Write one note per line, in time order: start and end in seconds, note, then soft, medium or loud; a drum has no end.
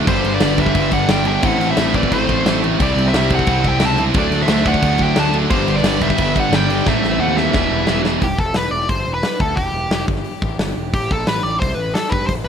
0.07 0.22 G1 loud
0.07 0.40 G2 medium
0.07 0.41 D3 loud
0.07 0.42 G3 loud
0.07 1.26 B3 loud
0.07 1.25 D4 loud
0.07 0.32 G4 medium
0.07 0.34 C5 medium
0.07 kick loud
0.07 crash medium
0.24 0.39 G1 medium
0.24 crash medium
0.34 0.57 B4 medium
0.34 0.60 D5 loud
0.41 0.70 G1 loud
0.41 0.59 G2 medium
0.41 0.58 D3 medium
0.41 0.57 G3 medium
0.41 snare loud
0.41 crash medium
0.58 0.74 G2 medium
0.58 0.74 D3 medium
0.58 0.75 G3 loud
0.58 0.90 B4 medium
0.58 0.94 E5 loud
0.58 kick medium
0.58 crash medium
0.66 kick medium
0.75 0.89 G1 loud
0.75 1.07 G2 loud
0.75 1.08 D3 loud
0.75 1.09 G3 loud
0.75 kick loud
0.75 crash medium
0.91 1.07 G1 medium
0.91 1.09 D5 medium
0.91 1.10 F#5 loud
0.91 kick medium
0.91 crash medium
1.08 1.37 G1 loud
1.08 1.25 G2 medium
1.08 1.25 D3 medium
1.08 1.24 G3 medium
1.08 1.26 D5 medium
1.08 1.26 G5 medium
1.08 snare loud
1.08 crash medium
1.25 1.43 G2 medium
1.25 1.42 D3 medium
1.25 1.42 G3 loud
1.25 1.43 B3 medium
1.25 1.42 D4 medium
1.25 1.43 E5 medium
1.25 1.45 G5 loud
1.25 crash medium
1.43 1.58 A1 loud
1.43 1.76 A2 loud
1.43 1.77 E3 medium
1.43 1.77 A3 loud
1.43 2.62 C4 loud
1.43 2.61 E4 loud
1.43 1.69 C5 medium
1.43 1.71 F#5 loud
1.43 kick loud
1.43 crash medium
1.58 1.73 A1 medium
1.58 snare soft
1.58 crash medium
1.70 1.93 C5 medium
1.70 1.93 E5 loud
1.77 2.06 A1 medium
1.77 1.94 A2 medium
1.77 1.94 E3 medium
1.77 1.93 A3 loud
1.77 snare loud
1.77 crash medium
1.94 2.10 A2 medium
1.94 2.11 E3 medium
1.94 2.12 A3 loud
1.94 2.11 B4 medium
1.94 2.13 D5 medium
1.94 kick medium
1.94 crash medium
2.03 kick medium
2.11 2.26 A1 medium
2.11 2.45 A2 medium
2.11 2.46 E3 loud
2.11 2.47 A3 loud
2.11 2.59 A4 medium
2.11 2.59 C5 medium
2.11 kick medium
2.11 crash medium
2.28 2.43 A1 medium
2.28 kick medium
2.28 crash medium
2.44 2.73 A1 medium
2.44 2.63 A2 medium
2.44 2.62 E3 medium
2.44 2.61 A3 medium
2.44 snare loud
2.44 crash medium
2.62 2.78 A2 medium
2.62 2.79 E3 medium
2.62 2.79 A3 medium
2.62 2.79 C4 medium
2.62 2.78 E4 loud
2.62 crash medium
2.78 2.94 C2 medium
2.78 3.11 C3 medium
2.78 3.12 G3 medium
2.78 3.13 C4 loud
2.78 3.98 E4 loud
2.78 3.04 G4 medium
2.78 kick loud
2.78 crash medium
2.82 3.07 D5 loud
2.96 3.10 C2 medium
2.96 crash medium
3.06 3.30 C5 medium
3.06 3.30 E5 loud
3.06 snare soft
3.12 3.41 C2 medium
3.12 3.30 C3 medium
3.12 3.29 G3 medium
3.12 3.28 C4 medium
3.12 snare loud
3.12 crash medium
3.29 3.45 C3 medium
3.29 3.46 G3 medium
3.29 3.47 C4 loud
3.29 3.63 C5 medium
3.29 kick medium
3.29 crash medium
3.35 3.67 F#5 loud
3.39 kick medium
3.47 3.61 C2 loud
3.47 3.79 C3 medium
3.47 3.80 G3 loud
3.47 3.81 C4 loud
3.47 kick loud
3.47 crash medium
3.64 3.79 C2 medium
3.64 3.81 E5 medium
3.64 kick medium
3.64 crash medium
3.69 3.86 G5 loud
3.80 4.10 C#2 loud
3.80 3.98 C3 medium
3.80 3.98 G3 medium
3.80 3.97 C4 loud
3.80 3.99 E5 medium
3.80 snare loud
3.80 crash medium
3.86 4.01 A5 loud
3.98 4.15 C3 medium
3.98 4.15 G3 medium
3.98 4.14 C4 loud
3.98 4.15 E4 loud
3.98 crash medium
4.14 4.29 D2 loud
4.14 4.47 D3 medium
4.14 5.33 F#3 medium
4.14 4.48 A3 medium
4.14 4.50 D4 loud
4.14 4.40 A4 medium
4.14 kick loud
4.14 crash medium
4.18 4.42 D5 loud
4.30 4.45 D2 loud
4.30 snare soft
4.30 crash medium
4.40 4.65 C5 medium
4.40 4.68 E5 loud
4.40 snare soft
4.48 4.77 D2 loud
4.48 4.66 D3 medium
4.48 4.66 A3 medium
4.48 4.66 D4 medium
4.48 snare loud
4.48 crash medium
4.65 4.81 D3 medium
4.65 4.83 A3 medium
4.65 4.83 D4 loud
4.65 5.02 F#5 loud
4.65 kick medium
4.65 crash medium
4.70 5.00 D5 loud
4.74 kick medium
4.82 4.97 D2 loud
4.82 5.14 D3 loud
4.82 5.15 A3 loud
4.82 5.16 D4 loud
4.82 kick loud
4.82 crash medium
4.98 5.14 D2 medium
4.98 kick medium
4.98 crash medium
5.02 5.19 E5 medium
5.02 5.19 G5 loud
5.16 5.45 D2 medium
5.16 5.34 D3 medium
5.16 5.33 A3 medium
5.16 5.33 D4 loud
5.16 5.35 F#5 medium
5.16 5.35 A5 loud
5.16 snare loud
5.16 crash medium
5.34 5.50 D3 medium
5.34 5.50 F#3 medium
5.34 5.50 A3 medium
5.34 5.50 D4 loud
5.34 crash medium
5.50 5.65 G1 loud
5.50 5.84 G2 medium
5.50 5.85 D3 medium
5.50 5.85 G3 loud
5.50 6.69 B3 loud
5.50 6.68 D4 loud
5.50 5.75 G4 medium
5.50 5.77 C5 loud
5.50 kick loud
5.50 crash medium
5.67 5.81 G1 medium
5.67 snare soft
5.67 crash medium
5.76 6.01 B4 medium
5.76 6.02 D5 loud
5.76 snare soft
5.83 6.12 G1 medium
5.83 6.02 G2 medium
5.83 6.02 D3 medium
5.83 6.01 G3 loud
5.83 snare loud
5.83 crash medium
6.01 6.18 G2 medium
6.01 6.19 D3 medium
6.01 6.19 G3 loud
6.01 6.34 B4 medium
6.01 6.37 E5 loud
6.01 kick medium
6.01 crash medium
6.10 kick medium
6.18 6.33 G1 loud
6.18 6.52 G2 loud
6.18 6.52 D3 loud
6.18 6.53 G3 loud
6.18 kick loud
6.18 crash medium
6.36 6.50 G1 loud
6.36 6.52 D5 medium
6.36 6.54 F#5 loud
6.36 kick medium
6.36 crash medium
6.51 6.80 G1 loud
6.51 6.70 G2 medium
6.51 6.69 D3 medium
6.51 6.68 G3 loud
6.51 6.88 G5 medium
6.51 snare loud
6.51 crash medium
6.57 6.88 D5 medium
6.69 6.86 G2 medium
6.69 6.86 D3 medium
6.69 6.85 G3 loud
6.69 6.86 B3 medium
6.69 6.85 D4 loud
6.69 crash medium
6.86 7.01 A1 loud
6.86 7.20 A2 medium
6.86 7.21 E3 loud
6.86 7.22 A3 loud
6.86 7.54 C4 loud
6.86 7.55 E4 loud
6.86 7.19 C5 medium
6.86 7.22 E5 loud
6.86 kick loud
6.86 snare medium
7.03 7.17 A1 loud
7.03 snare medium
7.19 7.48 D#2 loud
7.19 7.39 A2 medium
7.19 7.38 E3 medium
7.19 7.38 A3 loud
7.19 7.37 C5 medium
7.19 7.38 F#5 loud
7.37 7.55 A2 medium
7.37 7.54 E3 medium
7.37 7.54 A3 medium
7.37 8.01 E5 medium
7.37 snare medium
7.42 8.03 B4 medium
7.53 7.68 E1 loud
7.53 7.88 E2 medium
7.53 7.88 B2 loud
7.53 7.89 E3 loud
7.53 8.22 G3 loud
7.53 8.22 B3 loud
7.53 8.22 E4 medium
7.53 kick loud
7.53 snare medium
7.71 7.86 E1 loud
7.87 8.16 E1 loud
7.87 8.06 E2 medium
7.87 8.06 B2 medium
7.87 8.05 E3 loud
7.87 snare loud
8.05 8.22 E2 medium
8.05 8.22 B2 medium
8.05 8.22 E3 medium
8.05 snare medium
8.21 8.38 E1 medium
8.21 8.40 G4 medium
8.21 kick loud
8.21 open hi-hat medium
8.38 8.53 F1 medium
8.38 8.55 A4 medium
8.38 kick loud
8.54 8.70 E1 medium
8.54 8.71 B4 medium
8.54 snare loud
8.54 open hi-hat medium
8.70 8.87 E1 medium
8.70 8.89 D5 medium
8.80 snare soft
8.89 9.05 G1 loud
8.89 9.14 C5 medium
8.89 kick loud
8.89 open hi-hat medium
9.06 9.22 E1 medium
9.14 9.41 B4 medium
9.23 snare loud
9.23 open hi-hat soft
9.40 9.56 D2 medium
9.40 9.57 A4 medium
9.40 kick loud
9.55 9.71 E1 medium
9.55 10.04 G4 medium
9.55 kick medium
9.55 open hi-hat medium
9.72 9.88 E1 medium
9.89 10.06 F1 medium
9.89 snare loud
9.89 open hi-hat medium
10.08 10.24 G1 medium
10.08 kick medium
10.16 snare soft
10.24 open hi-hat soft
10.42 10.58 A1 medium
10.42 kick loud
10.58 10.75 G1 medium
10.58 snare loud
10.58 open hi-hat soft
10.76 10.92 E1 medium
10.93 11.09 A1 medium
10.93 11.11 G4 medium
10.93 kick loud
10.93 open hi-hat medium
11.11 11.27 A#1 medium
11.11 11.27 A4 medium
11.11 kick loud
11.27 11.42 A1 medium
11.27 11.43 B4 medium
11.27 snare loud
11.27 open hi-hat medium
11.43 11.60 A1 medium
11.43 11.59 D5 medium
11.60 11.76 C2 loud
11.60 11.75 C5 medium
11.60 kick loud
11.60 open hi-hat medium
11.75 11.93 A1 medium
11.75 11.94 B4 medium
11.94 12.12 A4 medium
11.94 snare loud
11.94 open hi-hat medium
12.10 12.28 G2 loud
12.10 12.26 B4 medium
12.10 kick loud
12.27 12.44 A1 medium
12.27 12.32 C5 medium
12.27 kick medium
12.27 open hi-hat medium
12.44 12.48 A1 medium
12.44 12.48 B4 medium